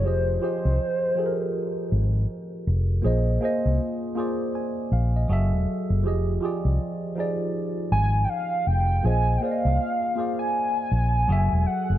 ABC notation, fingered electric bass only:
X:1
M:4/4
L:1/16
Q:"Swing 16ths" 1/4=80
K:Fdor
V:1 name="Fingered electric bass" clef=bass
F,,,2 z C,, z6 A,,,2 z2 F,,,2 | B,,,2 z C,, z6 B,,,2 _G,,, _F,,, z G,,, | F,,,2 z C,, z6 A,,,2 z2 F,,,2 | B,,,2 z C,, z6 B,,,2 _G,,, _F,,, z G,,, |]